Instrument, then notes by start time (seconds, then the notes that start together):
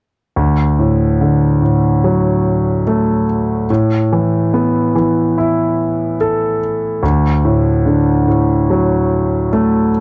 grand piano
0.36 D2
0.79 A2
1.21 D3
1.62 A2
2.04 F#3
2.87 A3
3.70 A2
4.13 E3
4.54 B3
4.95 E3
5.38 E4
6.21 A4
7.03 D2
7.45 A2
7.86 D3
8.28 A2
8.70 F#3
9.53 A3